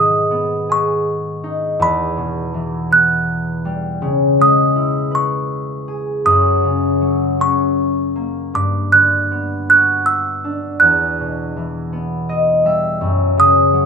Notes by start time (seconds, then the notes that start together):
Already playing: G#2 D#3 D#4 F#4 D#6
0.31 B3
0.69 G#4 C#6
1.44 D#4
1.79 E2 B5
2.17 B2
2.54 E3
2.90 B3 F#6
3.65 G3
4.02 C#3
4.39 G#3 D#6
4.76 E4
5.11 B4 C#6
5.88 G#4
6.25 F#2 D#6
6.64 C#3
7.01 F#3
7.39 C#4 C#6
8.16 A#3
8.54 G2 D6
8.92 D3 F#6
9.31 B3
9.69 F#4 F#6
10.06 E6
10.44 D4
10.80 E2 F#6
11.20 B2
11.57 E3
11.93 B3
12.29 D#5
12.65 G3 E5
13.01 F#2
13.37 C#3 D#6
13.74 F#3